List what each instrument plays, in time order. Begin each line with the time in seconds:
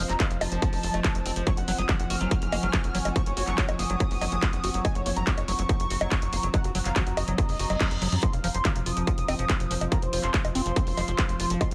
Already playing: ambient pad F3 C4, analog synth pad F4 C5 D#5
0.09 analog synth bass F1, acid bass F3, analog synth lead A#5, clap, closed hi-hat
0.20 acid bass D#3, analog synth lead F5, kick, clap, closed hi-hat
0.31 analog synth bass F1, analog synth lead F5, closed hi-hat
0.41 analog synth bass F1, acid bass F4, analog synth lead A5, open hi-hat, high bongo
0.52 analog synth bass F1, acid bass F3, closed hi-hat
0.62 kick, closed hi-hat
0.73 analog synth bass F1, open hi-hat
0.83 analog synth bass F1, acid bass F#3, open hi-hat
0.94 analog synth bass F1, acid bass A3, closed hi-hat, high bongo
1.04 acid bass F3, kick, clap, closed hi-hat
1.15 analog synth bass F1, closed hi-hat
1.26 analog synth bass F1, acid bass C4, open hi-hat
1.36 analog synth bass F1, acid bass F3, closed hi-hat
1.47 acid bass F#3, analog synth pad F#5, analog synth lead C#6, kick, closed hi-hat
1.57 analog synth bass F#1, analog synth lead F#5, closed hi-hat
1.68 analog synth bass F#1, acid bass F#3, analog synth lead F#5, open hi-hat
1.78 analog synth bass F#1, acid bass F#3, analog synth pad G#5, analog synth lead D#6, closed hi-hat
1.85 acid bass F3, analog synth lead F#5, analog synth pad C#6, kick, clap, closed hi-hat, high bongo
2.00 analog synth bass F#1, analog synth lead F#5, closed hi-hat
2.10 analog synth bass F#1, acid bass F#4, analog synth lead F6, open hi-hat
2.21 analog synth bass F#1, acid bass F#3, closed hi-hat
2.31 acid bass F#3, kick, closed hi-hat
2.42 analog synth bass F#1, closed hi-hat
2.52 analog synth bass F#1, acid bass A#3, open hi-hat, high bongo
2.63 analog synth bass F#1, acid bass F#3, closed hi-hat
2.73 acid bass F#3, kick, clap, closed hi-hat
2.84 analog synth bass F#1, closed hi-hat
2.95 analog synth bass F#1, acid bass F#3, open hi-hat
3.05 analog synth bass F#1, acid bass F#3, closed hi-hat, high bongo
3.16 acid bass F3, analog synth lead C#6, kick, closed hi-hat
3.26 analog synth bass F#1, analog synth lead C#5, closed hi-hat
3.37 analog synth bass F#1, acid bass F#4, analog synth lead C#5, open hi-hat
3.47 analog synth bass F#1, acid bass F#3, analog synth lead C#6, clap, closed hi-hat
3.58 acid bass F#3, analog synth lead C#5, kick, clap, closed hi-hat
3.69 analog synth bass F#1, analog synth lead C#5, closed hi-hat, high bongo
3.79 analog synth bass F#1, acid bass A#3, analog synth lead D#6, open hi-hat
3.90 analog synth bass F#1, acid bass F#3, closed hi-hat
4.00 acid bass F#3, kick, closed hi-hat
4.11 analog synth bass F#1, open hi-hat
4.21 analog synth bass F#1, acid bass F#3, open hi-hat, high bongo
4.32 analog synth bass F#1, acid bass F#3, closed hi-hat
4.43 acid bass F3, kick, clap, closed hi-hat
4.53 analog synth bass F#1, closed hi-hat
4.64 analog synth bass F#1, acid bass F#4, open hi-hat
4.74 analog synth bass F#1, acid bass F#3, closed hi-hat
4.85 acid bass F#3, analog synth lead G#5, kick, closed hi-hat, high bongo
4.95 analog synth bass F#1, analog synth lead C#5, closed hi-hat
5.06 analog synth bass F#1, acid bass A#3, analog synth lead C#5, open hi-hat
5.16 analog synth bass F#1, acid bass F#3, analog synth lead A#5, analog synth pad A#5, closed hi-hat
5.27 acid bass F#3, analog synth lead C#5, kick, clap, closed hi-hat
5.38 analog synth bass F#1, analog synth lead C#5, closed hi-hat, high bongo
5.48 analog synth bass F#1, acid bass F#3, analog synth lead C#6, open hi-hat
5.59 analog synth bass F#1, acid bass F#3, closed hi-hat
5.69 acid bass F3, kick, closed hi-hat
5.80 analog synth bass F#1, closed hi-hat
5.90 analog synth bass F#1, acid bass F#4, open hi-hat
6.01 analog synth bass F#1, acid bass F#3, closed hi-hat, high bongo
6.12 acid bass F#3, kick, clap, closed hi-hat
6.22 analog synth bass F#1, closed hi-hat
6.33 analog synth bass F#1, acid bass A#3, open hi-hat
6.43 analog synth bass F#1, acid bass F#3, closed hi-hat
6.54 acid bass F#3, analog synth lead F#5, kick, closed hi-hat, high bongo
6.64 analog synth bass F#1, analog synth lead F#4, closed hi-hat
6.75 analog synth bass F#1, acid bass F#3, analog synth lead F#4, open hi-hat
6.85 analog synth bass F#1, acid bass F#3, analog synth lead F5, clap, closed hi-hat
6.96 acid bass F3, analog synth lead F#4, kick, clap, closed hi-hat
7.07 analog synth bass F#1, analog synth lead F#4, closed hi-hat
7.17 analog synth bass F#1, acid bass F#4, analog synth lead D#5, open hi-hat, high bongo
7.28 analog synth bass F#1, acid bass F#3, closed hi-hat
7.38 acid bass F#3, kick, closed hi-hat, reverse cymbal
7.49 analog synth bass F#1, open hi-hat
7.59 analog synth bass F#1, acid bass F#4, open hi-hat
7.70 analog synth bass F#1, acid bass F#3, closed hi-hat, high bongo
7.81 acid bass F#3, kick, clap, closed hi-hat
7.91 analog synth bass F#1, closed hi-hat
8.02 analog synth bass F#1, acid bass F#3, open hi-hat
8.12 analog synth bass F#2, acid bass F#3, closed hi-hat
8.23 acid bass F3, ambient pad F3 C4, analog synth pad F4, analog synth lead C6, kick, closed hi-hat
8.33 analog synth bass F1, analog synth lead F5, closed hi-hat
8.44 analog synth bass F1, acid bass F3, analog synth lead F5, analog synth pad F5, open hi-hat
8.54 analog synth bass F1, acid bass F3, analog synth lead C6, closed hi-hat
8.65 acid bass D#3, analog synth lead F5, kick, clap, closed hi-hat, high bongo
8.76 analog synth bass F1, analog synth lead F5, closed hi-hat
8.86 analog synth bass F1, acid bass F4, analog synth lead D#6, open hi-hat
8.97 analog synth bass F1, acid bass F3, closed hi-hat
9.01 analog synth pad C5
9.07 acid bass F3, kick, closed hi-hat
9.18 analog synth bass F1, closed hi-hat
9.28 analog synth bass F1, acid bass C4, open hi-hat, high bongo
9.39 analog synth bass F1, acid bass F3, closed hi-hat
9.49 acid bass F3, kick, clap, closed hi-hat
9.60 analog synth bass F1, closed hi-hat
9.71 analog synth bass F1, acid bass F3, open hi-hat
9.81 analog synth bass F1, acid bass F3, closed hi-hat, high bongo
9.92 acid bass D#3, analog synth lead A#5, kick, closed hi-hat
10.02 analog synth bass F1, analog synth lead C5, closed hi-hat
10.13 analog synth bass F1, acid bass F4, analog synth lead C5, open hi-hat
10.23 analog synth bass F1, acid bass F3, analog synth lead C6, clap, closed hi-hat
10.34 acid bass F3, analog synth lead C5, kick, clap, closed hi-hat
10.45 analog synth bass F1, analog synth lead C5, closed hi-hat, high bongo
10.55 analog synth bass F1, acid bass C4, analog synth lead C6, open hi-hat
10.66 analog synth bass F1, acid bass F3, closed hi-hat
10.76 acid bass F3, kick, closed hi-hat
10.87 analog synth bass F1, open hi-hat
10.97 analog synth bass F1, acid bass F3, open hi-hat, high bongo
11.08 analog synth bass F1, acid bass F3, closed hi-hat
11.19 acid bass D#3, kick, clap, closed hi-hat
11.29 analog synth bass F1, closed hi-hat
11.40 analog synth bass F1, acid bass F4, open hi-hat
11.50 analog synth bass F1, acid bass F3, closed hi-hat
11.61 analog synth lead C6, kick, closed hi-hat, high bongo
11.71 analog synth bass F1, analog synth lead F5, closed hi-hat